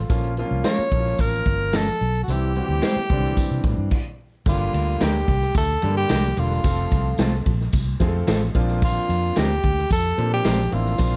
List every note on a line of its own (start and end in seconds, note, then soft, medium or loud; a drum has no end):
0.00 0.23 A4 medium
0.10 0.42 A#1 medium
0.10 0.31 F3 medium
0.10 0.31 A#3 medium
0.10 0.32 C#4 medium
0.10 0.32 F4 loud
0.10 kick loud
0.10 closed hi-hat medium
0.10 tambourine medium
0.10 muted conga soft
0.24 closed hi-hat soft
0.37 0.80 F3 medium
0.37 0.80 A#3 medium
0.37 0.45 C4 medium
0.37 0.81 F4 loud
0.37 closed hi-hat medium
0.45 0.83 C#4 medium
0.51 0.62 C2 medium
0.64 0.76 A#3 medium
0.64 0.77 C#4 medium
0.64 0.77 F4 medium
0.64 0.77 A#4 medium
0.64 1.22 C#5 loud
0.64 snare loud
0.64 closed hi-hat medium
0.64 tambourine medium
0.64 high conga medium
0.79 muted fingered electric bass stroke medium
0.91 1.13 A#1 medium
0.91 1.77 F3 medium
0.91 1.77 A#3 medium
0.91 1.77 C#4 medium
0.91 0.99 E4 medium
0.91 kick loud
0.91 closed hi-hat medium
0.99 1.80 F4 medium
1.06 snare soft
1.18 1.40 A1 medium
1.18 1.78 A#4 loud
1.18 kick medium
1.18 closed hi-hat medium
1.18 tambourine loud
1.18 muted conga soft
1.46 1.89 G1 medium
1.46 kick loud
1.46 closed hi-hat medium
1.46 muted conga soft
1.73 1.85 A#3 medium
1.73 1.86 C#4 loud
1.73 1.86 F4 medium
1.73 2.23 A4 loud
1.73 1.86 A#4 loud
1.73 snare loud
1.73 closed hi-hat medium
1.73 tambourine loud
1.73 high conga medium
1.87 high conga medium
2.01 2.22 B1 medium
2.01 closed hi-hat medium
2.15 closed hi-hat medium
2.23 2.33 F#4 medium
2.28 2.60 C2 loud
2.28 2.50 E3 medium
2.28 2.50 G3 medium
2.28 2.50 C4 medium
2.28 2.50 E4 medium
2.28 3.93 G4 loud
2.28 closed hi-hat loud
2.28 tambourine medium
2.28 muted conga soft
2.42 closed hi-hat soft
2.55 2.98 E3 medium
2.55 2.98 G3 medium
2.55 2.98 C4 medium
2.55 2.63 F#4 medium
2.55 closed hi-hat medium
2.64 3.02 G4 medium
2.69 2.80 D2 medium
2.82 2.94 C4 medium
2.82 2.95 E4 medium
2.82 2.95 G4 medium
2.82 2.95 C5 medium
2.82 snare loud
2.82 closed hi-hat medium
2.82 tambourine loud
2.82 high conga medium
2.96 muted fingered electric bass stroke soft
3.10 3.31 C2 medium
3.10 3.17 D3 medium
3.10 3.92 G3 medium
3.10 3.93 C4 medium
3.10 3.93 D4 loud
3.10 kick loud
3.10 closed hi-hat medium
3.10 low conga medium
3.17 3.95 E3 medium
3.24 snare soft
3.37 kick medium
3.37 closed hi-hat medium
3.37 tambourine medium
3.37 muted conga soft
3.37 low conga medium
3.51 3.62 C3 loud
3.64 3.75 A2 medium
3.64 kick loud
3.64 snare soft
3.64 closed hi-hat medium
3.64 muted conga soft
3.78 3.89 G2 medium
3.91 kick loud
3.91 crash medium
4.46 4.68 G1 medium
4.46 5.31 D3 medium
4.46 5.31 G3 medium
4.46 5.31 A#3 medium
4.46 5.31 D4 medium
4.46 5.05 F4 medium
4.46 5.31 G4 medium
4.46 kick loud
4.46 crash loud
4.46 tambourine medium
4.46 muted conga soft
4.73 4.95 D2 medium
4.73 ride medium
5.01 5.22 D2 medium
5.01 5.13 A#3 medium
5.01 5.13 D4 medium
5.01 5.13 G4 medium
5.01 5.57 G4 loud
5.01 5.13 A#4 medium
5.01 snare loud
5.01 ride medium
5.01 tambourine loud
5.01 high conga medium
5.28 5.49 C2 medium
5.28 kick loud
5.28 ride medium
5.42 snare soft
5.54 5.76 D2 loud
5.54 5.95 A4 loud
5.54 kick loud
5.54 ride medium
5.54 tambourine medium
5.82 6.04 G2 loud
5.82 6.25 D3 medium
5.82 6.25 G3 medium
5.82 5.89 A3 medium
5.82 6.25 D4 medium
5.82 6.25 G4 medium
5.82 snare soft
5.82 ride medium
5.82 muted conga medium
5.89 6.28 A#3 medium
5.97 6.40 G4 loud
6.09 6.31 C2 medium
6.09 6.22 A#3 medium
6.09 6.22 D4 medium
6.09 6.22 G4 medium
6.09 6.23 A#4 medium
6.09 snare loud
6.09 ride medium
6.09 tambourine loud
6.09 high conga medium
6.24 high conga medium
6.37 6.58 E1 loud
6.37 6.58 D3 medium
6.37 6.58 G3 medium
6.37 6.58 A#3 medium
6.37 6.58 D4 medium
6.37 7.47 F4 medium
6.37 6.58 A4 medium
6.37 ride medium
6.50 snare soft
6.64 6.86 F1 loud
6.64 7.49 F3 medium
6.64 7.49 A3 medium
6.64 7.49 C4 medium
6.64 7.49 F4 medium
6.64 7.49 A4 medium
6.64 kick loud
6.64 ride medium
6.64 tambourine medium
6.64 muted conga soft
6.92 7.13 C2 loud
6.92 kick loud
6.92 ride medium
7.18 7.40 C2 loud
7.18 7.31 A3 medium
7.18 7.31 C4 medium
7.18 7.31 F4 medium
7.18 7.32 A4 medium
7.18 snare loud
7.18 ride medium
7.18 tambourine medium
7.18 high conga medium
7.46 7.67 A#1 medium
7.46 kick medium
7.46 ride medium
7.61 snare soft
7.73 7.95 C2 medium
7.73 kick loud
7.73 ride medium
7.73 tambourine loud
7.73 muted conga soft
7.73 low conga medium
8.00 8.22 F2 loud
8.00 8.42 F3 medium
8.00 8.43 A3 medium
8.00 8.43 C4 medium
8.00 8.43 F4 medium
8.00 8.07 G#4 medium
8.00 kick loud
8.00 snare soft
8.00 ride medium
8.00 muted conga soft
8.08 8.46 A4 medium
8.27 8.49 A1 medium
8.27 8.39 A3 medium
8.27 8.40 C4 medium
8.27 8.40 F4 medium
8.27 8.40 A4 medium
8.27 snare loud
8.27 ride medium
8.27 tambourine loud
8.27 high conga medium
8.41 high conga medium
8.55 8.97 A#1 loud
8.55 9.42 F3 medium
8.55 9.42 A#3 medium
8.55 9.42 C4 medium
8.55 9.42 D4 medium
8.55 9.42 F4 loud
8.55 kick medium
8.55 ride medium
8.68 snare soft
8.82 9.40 F4 medium
8.82 kick loud
8.82 ride medium
8.82 tambourine medium
8.82 muted conga soft
9.09 9.30 F2 loud
9.09 ride medium
9.36 9.58 D2 medium
9.36 9.48 F3 medium
9.36 9.48 C4 loud
9.36 9.48 D4 medium
9.36 9.92 G4 loud
9.36 9.49 A#4 loud
9.36 snare loud
9.36 ride medium
9.36 tambourine loud
9.36 high conga medium
9.64 9.85 D2 medium
9.64 kick loud
9.64 ride medium
9.78 snare soft
9.91 10.12 F2 loud
9.91 10.29 A4 loud
9.91 kick loud
9.91 ride medium
9.91 tambourine loud
10.17 10.39 A#2 loud
10.17 10.60 F3 medium
10.17 10.60 A#3 medium
10.17 10.60 C4 medium
10.17 10.61 D4 medium
10.17 10.60 G4 medium
10.17 ride medium
10.17 muted conga soft
10.33 10.75 G4 loud
10.44 10.67 A#1 medium
10.44 10.57 F3 medium
10.44 10.57 C4 medium
10.44 10.57 D4 medium
10.44 10.58 A#4 loud
10.44 snare loud
10.44 ride medium
10.44 tambourine loud
10.44 high conga medium
10.58 high conga medium
10.71 10.94 A1 medium
10.71 10.93 F3 medium
10.71 10.93 A#3 medium
10.71 10.93 C4 medium
10.71 10.94 D4 medium
10.71 10.94 E4 medium
10.71 11.16 F4 medium
10.71 ride medium
10.85 snare soft
10.98 11.16 A#1 loud
10.98 11.16 F3 medium
10.98 11.16 A#3 medium
10.98 11.16 C4 medium
10.98 11.16 D4 medium
10.98 11.16 F4 medium
10.98 kick loud
10.98 ride medium
10.98 tambourine medium
10.98 muted conga soft